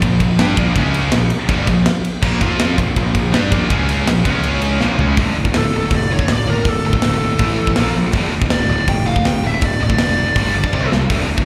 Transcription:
0.02 A#1 A#2 F3, kick, ride
0.20 A#1 A#2 F3, kick, ride
0.39 G2 G3 D4 G4, snare, ride
0.57 A#1 A#2 F3 A#3, kick, ride
0.76 C#2 C#3 G#3 C#4, kick, ride
0.94 ride
1.12 A#1 A#2 F3, snare, ride
1.30 ride
1.49 G1 G2 D3 G3, kick, ride
1.67 A#1 A#2 F3, kick, ride
1.86 snare, ride
2.05 ride
2.23 A#1 A#2 F3 A#3, kick, crash
2.41 F2 F3 C4 F4, kick, ride
2.60 snare, ride
2.78 A#1 A#2 F3, kick, ride
2.96 A#1 A#2 F3, kick, ride
3.15 A#1 A#2 F3, kick, ride
3.34 G2 G3 D4 G4, snare, ride
3.52 A#1 A#2 F3 A#3, kick, ride
3.69 C#2 C#3 G#3 C#4, kick, ride
3.89 ride
4.07 A#1 A#2 F3, snare, ride
4.25 C#2 C#3 G#3 C#4, kick, ride
4.43 ride
4.62 ride
4.80 A#1 A#2 F3 A#3, snare
4.98 C#2 C#3 G#3 C#4, floor tom
5.17 D1 D2 A2 D3, kick, open hi-hat
5.36 D1 D2 A2
5.45 D2 A2, kick
5.53 D1 D2 A2, snare, open hi-hat
5.57 A4
5.62 D2 A2
5.73 D1 D2 A2 A4
5.81 D2 A2
5.90 F1 D2 A2 D5, kick, open hi-hat
6.11 D2 A2 C#5
6.19 D2 A2, kick
6.28 D1 D2 A2, snare, open hi-hat
6.32 D5
6.46 D1 D2 A2 A#4
6.57 D2 A2
6.65 D1 D2 A2 A4, kick, open hi-hat
6.85 D1 D2 A2 A4
6.93 D2 A2, kick
7.02 D1 D2 A2, snare, open hi-hat
7.14 D2 A2
7.23 D2 A2
7.32 D2 A2
7.39 A1 A2 E3 A3, kick, open hi-hat
7.59 A2 E3
7.67 A2 E3, kick
7.76 A#1 A#2 F3, snare, open hi-hat
7.80 A#3
7.94 A#1 A#2 F3
7.99 A#2 F3
8.04 A#2 F3
8.08 A#2
8.12 D1 D2 A2, kick, open hi-hat
8.17 A2 D3
8.32 D1 D2 A2
8.36 D2
8.42 A2, kick
8.46 D2
8.50 D1 D2 A2 D5, snare, open hi-hat
8.63 D2 A2
8.69 D1 D2 A2 D5
8.80 D2 A2
8.87 F1 D2 A2 G5, kick, open hi-hat
9.07 D2 A2 F5
9.16 D2 A2, kick
9.25 D1 D2 A2 G5, snare, open hi-hat
9.44 D1 D2 A2 E5
9.54 D2 A2
9.61 D1 D2 A2 D5, kick, open hi-hat
9.80 D1 D2 A2 D5
9.89 D2 A2, kick
9.98 F1 D2 A2, snare, open hi-hat
10.08 D2 A2
10.17 D2 A2
10.28 D2 A2
10.35 G1 G2 D3 G3, kick, open hi-hat
10.54 G2 D3
10.63 G2 D3, kick
10.72 C2 C3 G3 C4, kick
10.92 C2 C3 G3, snare
11.00 C3 G3
11.10 D1 D2 A2 D3, kick, open hi-hat
11.28 D1 D2 A2
11.38 D2 A2, kick

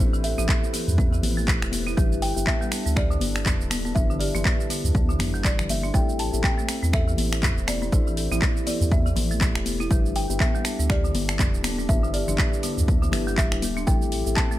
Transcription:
Already playing: A3 E4 B4 C5
0.00 A1 C4 E4 G4 A4 C5 E5
0.13 E3, cabasa
0.24 A4 E5, open hi-hat, cabasa
0.38 A1 C4 E4 G4 A4 E5, muted conga, low conga, cabasa
0.49 kick, clap, high conga, cabasa
0.64 cabasa
0.73 E3, open hi-hat, high conga, cabasa
0.88 E2, mid tom, cabasa
0.98 C4, kick, high conga, cabasa
1.12 E3, muted conga, cabasa
1.23 A1, open hi-hat, high conga, low conga, cabasa
1.37 A3, high conga, cabasa
1.48 A3, kick, clap, cabasa
1.62 E1, finger snap, cabasa
1.72 open hi-hat, high conga, cabasa
1.87 E4, muted conga, cabasa
1.97 G1 G3 D4 E4 G4 A4 B4 E5, kick, low conga, cabasa
2.12 cabasa
2.22 G5, open hi-hat, cabasa
2.36 G1 D4 E4 G4 B4 E5, muted conga, cabasa
2.46 B3 E5, kick, clap, high conga, cabasa
2.61 G3, cabasa
2.72 B3, finger snap, open hi-hat, muted conga, cabasa
2.86 D2 B3, cabasa
2.96 G4 D5, finger snap, kick, cabasa
3.10 D3, muted conga, cabasa
3.21 G1, open hi-hat, high conga, cabasa
3.36 finger snap, cabasa
3.46 kick, clap, mid tom, muted conga, high conga, cabasa
3.60 D1, cabasa
3.71 B3, finger snap, open hi-hat, high conga, cabasa
3.85 B3, muted conga, high conga, cabasa
3.95 G1 B3 D4 E4 G4 B4 E5, kick, low conga, cabasa
4.10 D3, cabasa
4.20 G4 D5, open hi-hat, cabasa
4.35 G1 D4 E4 G4 B4 E5, muted conga, low conga, cabasa
4.45 kick, clap, high conga, cabasa
4.60 cabasa
4.70 D3, open hi-hat, high conga, cabasa
4.84 D2, mid tom, cabasa
4.95 B3, kick, high conga, cabasa
5.09 D3, muted conga, cabasa
5.19 G1, finger snap, mid tom, open hi-hat, high conga, low conga, cabasa
5.34 G3, high conga, cabasa
5.44 G3 D5, kick, clap, muted conga, cabasa
5.59 G1, finger snap, low conga, cabasa
5.69 E5, open hi-hat, high conga, cabasa
5.83 D4, muted conga, cabasa
5.94 A1 A3 C4 E4 G4 A4 C5 E5 G5, kick, low conga, cabasa
6.09 cabasa
6.19 A5, open hi-hat, cabasa
6.33 A1 C4 E4 G4 A4 E5, muted conga, cabasa
6.43 C4 G5, kick, clap, high conga, cabasa
6.58 A3, cabasa
6.68 C4, finger snap, open hi-hat, muted conga, cabasa
6.83 E2 C4, cabasa
6.93 A4 E5, finger snap, kick, cabasa
7.08 E3, muted conga, cabasa
7.18 A1, open hi-hat, high conga, cabasa
7.33 finger snap, cabasa
7.43 kick, clap, mid tom, muted conga, high conga, cabasa
7.57 E1, cabasa
7.67 C4 D5, finger snap, open hi-hat, high conga, cabasa
7.82 C4, muted conga, high conga, cabasa
7.92 A1 C4 D4 E4 G4 A4 C5 E5, kick, cabasa
8.07 E3, cabasa
8.17 A4, open hi-hat, cabasa
8.31 A1 C4 E4 G4 A4 E5, muted conga, low conga, cabasa
8.42 kick, clap, high conga, cabasa
8.57 cabasa
8.67 E3 D5, open hi-hat, high conga, cabasa
8.81 E2, mid tom, cabasa
8.92 C4 E5, kick, high conga, cabasa
9.06 E3, muted conga, cabasa
9.16 A1, open hi-hat, high conga, low conga, cabasa
9.31 A3, high conga, cabasa
9.41 A3, kick, clap, muted conga, cabasa
9.55 E1, finger snap, cabasa
9.66 open hi-hat, high conga, cabasa
9.80 E4, muted conga, cabasa
9.91 G1 G3 D4 E4 G4 A4 B4 E5, kick, low conga, cabasa
10.06 cabasa
10.16 G5, open hi-hat, cabasa
10.29 G1 D4 E4 G4 B4 E5, muted conga, cabasa
10.40 B3 E5, kick, clap, high conga, cabasa
10.55 G3, cabasa
10.65 B3, finger snap, open hi-hat, muted conga, cabasa
10.79 D2 B3, cabasa
10.90 G4 D5, finger snap, kick, cabasa
11.04 D3, muted conga, cabasa
11.15 G1, open hi-hat, high conga, cabasa
11.29 finger snap, cabasa
11.39 kick, clap, mid tom, muted conga, high conga, cabasa
11.54 D1, cabasa
11.63 B3, finger snap, open hi-hat, high conga, cabasa
11.78 B3, muted conga, high conga, cabasa
11.89 G1 B3 D4 E4 G4 B4 E5, kick, cabasa
12.03 D3, cabasa
12.08 E5
12.14 G4 D5, open hi-hat, cabasa
12.28 G1 D4 E4 G4 B4 E5, muted conga, low conga, cabasa
12.38 kick, clap, high conga, cabasa
12.53 cabasa
12.63 D3, open hi-hat, high conga, cabasa
12.78 D2, mid tom, cabasa
12.88 B3, kick, high conga, cabasa
13.02 D3, muted conga, cabasa
13.12 G1 D4 E4 G4 B4 E5, finger snap, open hi-hat, high conga, low conga, cabasa
13.27 G3, high conga, cabasa
13.38 G3 E5, kick, clap, cabasa
13.52 D1 D4 E4 G4 B4 E5, finger snap, cabasa
13.62 open hi-hat, high conga, cabasa
13.77 D4, muted conga, cabasa
13.87 A1 A3 C4 E4 G4 A4 C5 E5 G5, kick, low conga, cabasa
14.02 cabasa
14.12 open hi-hat, cabasa
14.26 A1 C4 E4 G4 A4 E5, muted conga, cabasa
14.36 C4 A5, kick, clap, high conga, cabasa
14.51 A3, cabasa

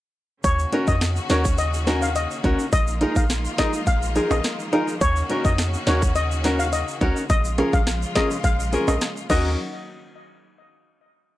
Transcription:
0.44 D#2 C#3 D#3 A#3 C#4 F#4 C#5, kick, closed hi-hat, shaker
0.59 shaker
0.72 C#4 D#4 F#4 A#4, closed hi-hat
0.87 F2 D#5, kick, shaker
1.01 cross-stick, snare, closed hi-hat, shaker
1.16 shaker
1.29 D#2 C#4 D#4 F#4 A#4 C#5, cross-stick, snare, closed hi-hat, shaker
1.45 muted nylon-string guitar stroke, kick, shaker
1.58 D#5, closed hi-hat, shaker
1.74 shaker
1.86 C#4 D#4 F#4 A#4, snare, closed hi-hat, shaker
2.02 F5, shaker
2.15 D#5, closed hi-hat, shaker
2.31 shaker
2.44 C#2 C#4 D#4 F#4 A#4, kick, closed hi-hat
2.59 shaker
2.72 A#1 F3 G#3 F4 D#5, kick, closed hi-hat, shaker
2.87 shaker
3.01 D#4 F4 G#4 A#4, closed hi-hat
3.16 A#1 F5, kick, shaker
3.30 cross-stick, snare, closed hi-hat, shaker
3.45 shaker
3.58 D#4 F4 G#4 A#4 D#5, kick, cross-stick, snare, closed hi-hat, shaker
3.73 muted nylon-string guitar stroke, shaker
3.87 A#1 F5, kick, closed hi-hat, shaker
4.02 shaker
4.15 D#4 F4 G#4 A#4, closed hi-hat, shaker
4.31 A#1 D#5, high timbale, shaker
4.44 cross-stick, snare, closed hi-hat, shaker
4.59 shaker
4.72 D#4 F4 G#4 A#4, closed hi-hat
4.88 shaker
5.01 D#2 C#3 C#4 F#4 C#5, kick, closed hi-hat, shaker
5.16 shaker
5.29 C#4 D#4 F#4 A#4, closed hi-hat
5.45 F2 D#5, kick, shaker
5.58 cross-stick, snare, closed hi-hat, shaker
5.74 shaker
5.86 D#2 C#4 D#4 F#4 A#4 C#5, cross-stick, snare, closed hi-hat, shaker
6.02 muted nylon-string guitar stroke, kick, shaker
6.15 D#5, closed hi-hat, shaker
6.31 shaker
6.44 C#4 D#4 F#4 A#4, snare, closed hi-hat, shaker
6.59 F5, shaker
6.73 D#5, closed hi-hat, shaker
6.88 shaker
7.01 C#2 C#4 D#4 F#4 A#4, kick, closed hi-hat
7.17 shaker
7.30 A#1 C#3 F3 G#3 F4 D#5, kick, closed hi-hat, shaker
7.45 shaker
7.58 C#4 F4 G#4 A#4, closed hi-hat, high timbale
7.73 A#1 F5, kick, shaker
7.87 cross-stick, snare, closed hi-hat, shaker
8.02 shaker
8.15 C#4 F4 G#4 A#4 D#5, kick, cross-stick, snare, closed hi-hat, shaker
8.30 muted nylon-string guitar stroke, shaker
8.44 A#1 F5, kick, closed hi-hat, shaker
8.60 shaker
8.72 C#4 F4 G#4 A#4, closed hi-hat, shaker
8.88 A#1 D#5, high timbale, shaker
9.01 cross-stick, snare, closed hi-hat, shaker
9.17 shaker
9.29 D#2 D#3 F#3 A#3 C#4 D#4 F#4 A#4 D#5, kick, crash, shaker

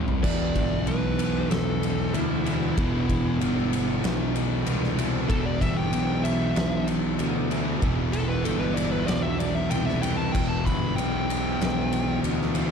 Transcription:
0.07 C2 C3 G3, floor tom
0.22 E1 E2 B2 E3 D5, kick, crash
0.56 G1, kick, ride
0.87 B1 B4, ride
1.19 ride
1.50 B1 A4, snare, ride
1.83 ride
2.14 D2 E4, ride
2.44 E2 B2 E3, ride
2.76 E1 E2 B2 E3, kick, ride
3.09 E1, kick, ride
3.41 G1, ride
3.73 ride
4.04 B1, snare, ride
4.36 ride
4.66 C2, ride
4.84 snare
4.97 E2 B2 E3, ride
5.29 E1 E2 B2 E3 A4, kick, ride
5.45 D5
5.61 G1 E5, kick, ride
5.77 G5
5.93 B1, ride
6.24 E5, ride
6.56 B1, snare, ride
6.88 ride
7.19 D2, ride
7.50 E2 B2 E3, ride
7.82 E1 E2 B2 E3, kick, ride
8.13 E1 A4, ride
8.29 B4
8.45 G1 A4, ride
8.60 B4
8.74 D5, ride
8.92 B4
9.06 B1 D5, snare, ride
9.22 E5
9.39 D5, ride
9.55 E5
9.70 C2 G5, ride
9.86 E5, snare
10.01 E2 B2 E3 G5, ride
10.17 A5
10.32 E1 E2 B2 G5, kick, crash
10.36 E3
10.49 A5
10.65 G1 B5, kick, ride
10.96 B1 G5, ride
11.30 ride
11.60 B1, snare, ride
11.93 ride
12.23 D2, ride
12.41 snare
12.54 E2 B2 E3, ride

